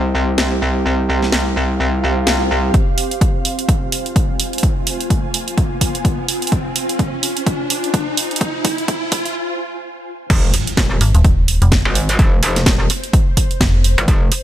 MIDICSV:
0, 0, Header, 1, 8, 480
1, 0, Start_track
1, 0, Key_signature, -4, "minor"
1, 0, Tempo, 472441
1, 865, Time_signature, 4, 2, 24, 8
1, 14662, End_track
2, 0, Start_track
2, 0, Title_t, "Ambient pad"
2, 0, Program_c, 0, 92
2, 0, Note_on_c, 0, 60, 84
2, 0, Note_on_c, 0, 67, 67
2, 0, Note_on_c, 0, 72, 72
2, 0, Note_on_c, 0, 75, 74
2, 305, Note_on_c, 0, 77, 75
2, 442, Note_off_c, 0, 75, 0
2, 2785, Note_on_c, 0, 65, 79
2, 2786, Note_off_c, 0, 67, 0
2, 3459, Note_on_c, 0, 80, 70
2, 3905, Note_off_c, 0, 77, 0
2, 4310, Note_off_c, 0, 60, 0
2, 9505, Note_off_c, 0, 65, 0
2, 9505, Note_off_c, 0, 72, 0
2, 9505, Note_off_c, 0, 80, 0
2, 10822, Note_on_c, 0, 72, 78
2, 14662, Note_off_c, 0, 72, 0
2, 14662, End_track
3, 0, Start_track
3, 0, Title_t, "FM bass"
3, 0, Program_c, 1, 39
3, 11185, Note_on_c, 1, 32, 99
3, 11301, Note_off_c, 1, 32, 0
3, 11324, Note_on_c, 1, 27, 95
3, 11782, Note_off_c, 1, 27, 0
3, 11804, Note_on_c, 1, 29, 95
3, 12022, Note_off_c, 1, 29, 0
3, 13825, Note_on_c, 1, 29, 96
3, 14181, Note_off_c, 1, 29, 0
3, 14662, End_track
4, 0, Start_track
4, 0, Title_t, "Wobble bass"
4, 0, Program_c, 2, 39
4, 0, Note_on_c, 2, 36, 85
4, 2764, Note_off_c, 2, 36, 0
4, 10464, Note_on_c, 2, 29, 99
4, 10688, Note_off_c, 2, 29, 0
4, 10945, Note_on_c, 2, 27, 100
4, 11169, Note_off_c, 2, 27, 0
4, 12043, Note_on_c, 2, 32, 97
4, 12368, Note_off_c, 2, 32, 0
4, 12385, Note_on_c, 2, 29, 96
4, 12609, Note_off_c, 2, 29, 0
4, 12625, Note_on_c, 2, 29, 96
4, 12849, Note_off_c, 2, 29, 0
4, 12864, Note_on_c, 2, 27, 100
4, 13088, Note_off_c, 2, 27, 0
4, 14204, Note_on_c, 2, 31, 98
4, 14289, Note_off_c, 2, 31, 0
4, 14304, Note_on_c, 2, 29, 97
4, 14528, Note_off_c, 2, 29, 0
4, 14662, End_track
5, 0, Start_track
5, 0, Title_t, "Impact"
5, 0, Program_c, 3, 103
5, 10465, Note_on_c, 3, 60, 75
5, 12385, Note_off_c, 3, 60, 0
5, 14662, End_track
6, 0, Start_track
6, 0, Title_t, "Riser"
6, 0, Program_c, 4, 103
6, 2785, Note_on_c, 4, 60, 79
6, 9505, Note_off_c, 4, 60, 0
6, 14662, End_track
7, 0, Start_track
7, 0, Title_t, "Swell"
7, 0, Program_c, 5, 103
7, 1825, Note_on_c, 5, 60, 73
7, 2785, Note_off_c, 5, 60, 0
7, 14662, End_track
8, 0, Start_track
8, 0, Title_t, "Drums"
8, 385, Note_on_c, 9, 38, 113
8, 487, Note_off_c, 9, 38, 0
8, 1244, Note_on_c, 9, 38, 35
8, 1345, Note_off_c, 9, 38, 0
8, 1345, Note_on_c, 9, 38, 116
8, 1447, Note_off_c, 9, 38, 0
8, 2305, Note_on_c, 9, 38, 120
8, 2406, Note_off_c, 9, 38, 0
8, 2784, Note_on_c, 9, 36, 116
8, 2785, Note_on_c, 9, 42, 65
8, 2886, Note_off_c, 9, 36, 0
8, 2887, Note_off_c, 9, 42, 0
8, 3024, Note_on_c, 9, 46, 101
8, 3126, Note_off_c, 9, 46, 0
8, 3164, Note_on_c, 9, 42, 53
8, 3264, Note_on_c, 9, 36, 114
8, 3265, Note_off_c, 9, 42, 0
8, 3265, Note_on_c, 9, 42, 68
8, 3366, Note_off_c, 9, 36, 0
8, 3367, Note_off_c, 9, 42, 0
8, 3505, Note_on_c, 9, 46, 104
8, 3607, Note_off_c, 9, 46, 0
8, 3644, Note_on_c, 9, 42, 53
8, 3745, Note_on_c, 9, 36, 115
8, 3746, Note_off_c, 9, 42, 0
8, 3746, Note_on_c, 9, 42, 68
8, 3846, Note_off_c, 9, 36, 0
8, 3847, Note_off_c, 9, 42, 0
8, 3986, Note_on_c, 9, 46, 105
8, 4088, Note_off_c, 9, 46, 0
8, 4125, Note_on_c, 9, 42, 56
8, 4225, Note_on_c, 9, 36, 120
8, 4226, Note_off_c, 9, 42, 0
8, 4226, Note_on_c, 9, 42, 68
8, 4327, Note_off_c, 9, 36, 0
8, 4327, Note_off_c, 9, 42, 0
8, 4466, Note_on_c, 9, 46, 107
8, 4567, Note_off_c, 9, 46, 0
8, 4605, Note_on_c, 9, 42, 50
8, 4656, Note_off_c, 9, 42, 0
8, 4656, Note_on_c, 9, 42, 66
8, 4705, Note_on_c, 9, 36, 122
8, 4757, Note_off_c, 9, 42, 0
8, 4806, Note_off_c, 9, 36, 0
8, 4946, Note_on_c, 9, 46, 107
8, 5047, Note_off_c, 9, 46, 0
8, 5085, Note_on_c, 9, 42, 52
8, 5185, Note_on_c, 9, 36, 119
8, 5186, Note_off_c, 9, 42, 0
8, 5186, Note_on_c, 9, 42, 65
8, 5287, Note_off_c, 9, 36, 0
8, 5288, Note_off_c, 9, 42, 0
8, 5426, Note_on_c, 9, 46, 109
8, 5528, Note_off_c, 9, 46, 0
8, 5565, Note_on_c, 9, 42, 55
8, 5665, Note_on_c, 9, 36, 119
8, 5666, Note_off_c, 9, 42, 0
8, 5666, Note_on_c, 9, 42, 66
8, 5766, Note_off_c, 9, 36, 0
8, 5767, Note_off_c, 9, 42, 0
8, 5905, Note_on_c, 9, 36, 62
8, 5905, Note_on_c, 9, 46, 108
8, 6006, Note_off_c, 9, 36, 0
8, 6007, Note_off_c, 9, 46, 0
8, 6044, Note_on_c, 9, 42, 52
8, 6145, Note_off_c, 9, 42, 0
8, 6145, Note_on_c, 9, 36, 126
8, 6145, Note_on_c, 9, 42, 66
8, 6246, Note_off_c, 9, 36, 0
8, 6247, Note_off_c, 9, 42, 0
8, 6385, Note_on_c, 9, 46, 110
8, 6487, Note_off_c, 9, 46, 0
8, 6524, Note_on_c, 9, 42, 49
8, 6575, Note_off_c, 9, 42, 0
8, 6575, Note_on_c, 9, 42, 64
8, 6624, Note_on_c, 9, 36, 108
8, 6625, Note_off_c, 9, 42, 0
8, 6625, Note_on_c, 9, 42, 60
8, 6726, Note_off_c, 9, 36, 0
8, 6727, Note_off_c, 9, 42, 0
8, 6865, Note_on_c, 9, 46, 108
8, 6967, Note_off_c, 9, 46, 0
8, 7004, Note_on_c, 9, 42, 51
8, 7104, Note_on_c, 9, 36, 100
8, 7105, Note_off_c, 9, 42, 0
8, 7105, Note_on_c, 9, 42, 63
8, 7206, Note_off_c, 9, 36, 0
8, 7207, Note_off_c, 9, 42, 0
8, 7345, Note_on_c, 9, 46, 110
8, 7447, Note_off_c, 9, 46, 0
8, 7484, Note_on_c, 9, 42, 53
8, 7584, Note_on_c, 9, 36, 106
8, 7585, Note_off_c, 9, 42, 0
8, 7585, Note_on_c, 9, 42, 63
8, 7686, Note_off_c, 9, 36, 0
8, 7686, Note_off_c, 9, 42, 0
8, 7825, Note_on_c, 9, 46, 112
8, 7927, Note_off_c, 9, 46, 0
8, 7964, Note_on_c, 9, 42, 52
8, 8064, Note_on_c, 9, 36, 110
8, 8065, Note_off_c, 9, 42, 0
8, 8065, Note_on_c, 9, 42, 65
8, 8166, Note_off_c, 9, 36, 0
8, 8167, Note_off_c, 9, 42, 0
8, 8305, Note_on_c, 9, 46, 115
8, 8407, Note_off_c, 9, 46, 0
8, 8444, Note_on_c, 9, 42, 47
8, 8495, Note_off_c, 9, 42, 0
8, 8495, Note_on_c, 9, 42, 64
8, 8544, Note_on_c, 9, 36, 108
8, 8545, Note_off_c, 9, 42, 0
8, 8545, Note_on_c, 9, 42, 60
8, 8646, Note_off_c, 9, 36, 0
8, 8647, Note_off_c, 9, 42, 0
8, 8784, Note_on_c, 9, 36, 105
8, 8785, Note_on_c, 9, 46, 107
8, 8886, Note_off_c, 9, 36, 0
8, 8886, Note_off_c, 9, 46, 0
8, 8924, Note_on_c, 9, 42, 50
8, 9024, Note_on_c, 9, 36, 105
8, 9025, Note_off_c, 9, 42, 0
8, 9025, Note_on_c, 9, 42, 65
8, 9126, Note_off_c, 9, 36, 0
8, 9126, Note_off_c, 9, 42, 0
8, 9264, Note_on_c, 9, 36, 103
8, 9264, Note_on_c, 9, 46, 111
8, 9366, Note_off_c, 9, 36, 0
8, 9366, Note_off_c, 9, 46, 0
8, 9403, Note_on_c, 9, 42, 52
8, 9505, Note_off_c, 9, 42, 0
8, 10465, Note_on_c, 9, 36, 121
8, 10465, Note_on_c, 9, 42, 68
8, 10465, Note_on_c, 9, 49, 101
8, 10566, Note_off_c, 9, 36, 0
8, 10567, Note_off_c, 9, 42, 0
8, 10567, Note_off_c, 9, 49, 0
8, 10705, Note_on_c, 9, 46, 106
8, 10807, Note_off_c, 9, 46, 0
8, 10844, Note_on_c, 9, 42, 56
8, 10945, Note_off_c, 9, 42, 0
8, 10945, Note_on_c, 9, 36, 119
8, 10945, Note_on_c, 9, 42, 69
8, 10946, Note_on_c, 9, 38, 124
8, 11047, Note_off_c, 9, 36, 0
8, 11047, Note_off_c, 9, 38, 0
8, 11047, Note_off_c, 9, 42, 0
8, 11185, Note_on_c, 9, 46, 108
8, 11286, Note_off_c, 9, 46, 0
8, 11324, Note_on_c, 9, 42, 58
8, 11425, Note_off_c, 9, 42, 0
8, 11425, Note_on_c, 9, 36, 120
8, 11425, Note_on_c, 9, 42, 70
8, 11527, Note_off_c, 9, 36, 0
8, 11527, Note_off_c, 9, 42, 0
8, 11665, Note_on_c, 9, 46, 107
8, 11767, Note_off_c, 9, 46, 0
8, 11804, Note_on_c, 9, 42, 57
8, 11905, Note_off_c, 9, 42, 0
8, 11905, Note_on_c, 9, 36, 125
8, 11905, Note_on_c, 9, 42, 69
8, 11906, Note_on_c, 9, 38, 126
8, 12007, Note_off_c, 9, 36, 0
8, 12007, Note_off_c, 9, 38, 0
8, 12007, Note_off_c, 9, 42, 0
8, 12145, Note_on_c, 9, 46, 107
8, 12247, Note_off_c, 9, 46, 0
8, 12284, Note_on_c, 9, 42, 64
8, 12385, Note_off_c, 9, 42, 0
8, 12385, Note_on_c, 9, 36, 127
8, 12386, Note_on_c, 9, 42, 65
8, 12487, Note_off_c, 9, 36, 0
8, 12487, Note_off_c, 9, 42, 0
8, 12625, Note_on_c, 9, 46, 108
8, 12727, Note_off_c, 9, 46, 0
8, 12764, Note_on_c, 9, 42, 54
8, 12765, Note_on_c, 9, 38, 38
8, 12865, Note_off_c, 9, 42, 0
8, 12865, Note_on_c, 9, 36, 125
8, 12865, Note_on_c, 9, 42, 68
8, 12866, Note_off_c, 9, 38, 0
8, 12866, Note_on_c, 9, 38, 124
8, 12966, Note_off_c, 9, 36, 0
8, 12967, Note_off_c, 9, 38, 0
8, 12967, Note_off_c, 9, 42, 0
8, 13105, Note_on_c, 9, 46, 110
8, 13207, Note_off_c, 9, 46, 0
8, 13244, Note_on_c, 9, 42, 57
8, 13344, Note_on_c, 9, 36, 123
8, 13345, Note_off_c, 9, 42, 0
8, 13345, Note_on_c, 9, 42, 67
8, 13446, Note_off_c, 9, 36, 0
8, 13447, Note_off_c, 9, 42, 0
8, 13584, Note_on_c, 9, 36, 64
8, 13585, Note_on_c, 9, 46, 110
8, 13686, Note_off_c, 9, 36, 0
8, 13687, Note_off_c, 9, 46, 0
8, 13724, Note_on_c, 9, 42, 54
8, 13824, Note_on_c, 9, 36, 127
8, 13826, Note_off_c, 9, 42, 0
8, 13826, Note_on_c, 9, 38, 123
8, 13826, Note_on_c, 9, 42, 67
8, 13926, Note_off_c, 9, 36, 0
8, 13927, Note_off_c, 9, 42, 0
8, 13928, Note_off_c, 9, 38, 0
8, 14066, Note_on_c, 9, 46, 113
8, 14167, Note_off_c, 9, 46, 0
8, 14204, Note_on_c, 9, 42, 63
8, 14304, Note_on_c, 9, 36, 127
8, 14306, Note_off_c, 9, 42, 0
8, 14306, Note_on_c, 9, 42, 63
8, 14406, Note_off_c, 9, 36, 0
8, 14407, Note_off_c, 9, 42, 0
8, 14545, Note_on_c, 9, 46, 108
8, 14647, Note_off_c, 9, 46, 0
8, 14662, End_track
0, 0, End_of_file